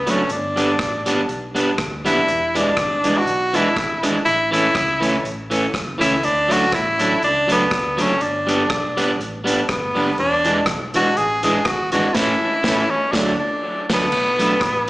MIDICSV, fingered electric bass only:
0, 0, Header, 1, 2, 480
1, 0, Start_track
1, 0, Key_signature, 2, "major"
1, 0, Tempo, 493827
1, 286, Time_signature, 4, 2, 24, 8
1, 14480, End_track
2, 0, Start_track
2, 0, Title_t, "Fingered electric bass"
2, 0, Program_c, 0, 33
2, 80, Note_on_c, 0, 30, 85
2, 260, Note_off_c, 0, 30, 0
2, 291, Note_on_c, 0, 31, 118
2, 698, Note_off_c, 0, 31, 0
2, 770, Note_on_c, 0, 33, 81
2, 1179, Note_off_c, 0, 33, 0
2, 1255, Note_on_c, 0, 35, 76
2, 1662, Note_off_c, 0, 35, 0
2, 1733, Note_on_c, 0, 38, 88
2, 2000, Note_on_c, 0, 30, 97
2, 2014, Note_off_c, 0, 38, 0
2, 2183, Note_off_c, 0, 30, 0
2, 2217, Note_on_c, 0, 28, 113
2, 2624, Note_off_c, 0, 28, 0
2, 2693, Note_on_c, 0, 32, 89
2, 3102, Note_off_c, 0, 32, 0
2, 3170, Note_on_c, 0, 35, 99
2, 3581, Note_off_c, 0, 35, 0
2, 3660, Note_on_c, 0, 32, 91
2, 3882, Note_off_c, 0, 32, 0
2, 3922, Note_on_c, 0, 32, 86
2, 4106, Note_off_c, 0, 32, 0
2, 4136, Note_on_c, 0, 33, 99
2, 4546, Note_off_c, 0, 33, 0
2, 4616, Note_on_c, 0, 37, 87
2, 5025, Note_off_c, 0, 37, 0
2, 5100, Note_on_c, 0, 33, 83
2, 5508, Note_off_c, 0, 33, 0
2, 5578, Note_on_c, 0, 30, 95
2, 5802, Note_off_c, 0, 30, 0
2, 5849, Note_on_c, 0, 37, 88
2, 6030, Note_off_c, 0, 37, 0
2, 6062, Note_on_c, 0, 38, 104
2, 6535, Note_on_c, 0, 33, 93
2, 6549, Note_off_c, 0, 38, 0
2, 6945, Note_off_c, 0, 33, 0
2, 7031, Note_on_c, 0, 37, 85
2, 7434, Note_off_c, 0, 37, 0
2, 7500, Note_on_c, 0, 38, 88
2, 7723, Note_off_c, 0, 38, 0
2, 7769, Note_on_c, 0, 30, 90
2, 7951, Note_off_c, 0, 30, 0
2, 7980, Note_on_c, 0, 31, 102
2, 8387, Note_off_c, 0, 31, 0
2, 8460, Note_on_c, 0, 35, 87
2, 8867, Note_off_c, 0, 35, 0
2, 8935, Note_on_c, 0, 33, 84
2, 9344, Note_off_c, 0, 33, 0
2, 9425, Note_on_c, 0, 31, 91
2, 9645, Note_off_c, 0, 31, 0
2, 9676, Note_on_c, 0, 30, 98
2, 9862, Note_off_c, 0, 30, 0
2, 9901, Note_on_c, 0, 28, 113
2, 10307, Note_off_c, 0, 28, 0
2, 10372, Note_on_c, 0, 35, 90
2, 10781, Note_off_c, 0, 35, 0
2, 10858, Note_on_c, 0, 33, 86
2, 11264, Note_off_c, 0, 33, 0
2, 11331, Note_on_c, 0, 32, 94
2, 11556, Note_off_c, 0, 32, 0
2, 11596, Note_on_c, 0, 32, 102
2, 11781, Note_off_c, 0, 32, 0
2, 11806, Note_on_c, 0, 33, 102
2, 11987, Note_off_c, 0, 33, 0
2, 12288, Note_on_c, 0, 33, 107
2, 12468, Note_off_c, 0, 33, 0
2, 12765, Note_on_c, 0, 38, 89
2, 12946, Note_off_c, 0, 38, 0
2, 13513, Note_on_c, 0, 38, 103
2, 13659, Note_off_c, 0, 38, 0
2, 13728, Note_on_c, 0, 35, 105
2, 14134, Note_off_c, 0, 35, 0
2, 14202, Note_on_c, 0, 33, 83
2, 14480, Note_off_c, 0, 33, 0
2, 14480, End_track
0, 0, End_of_file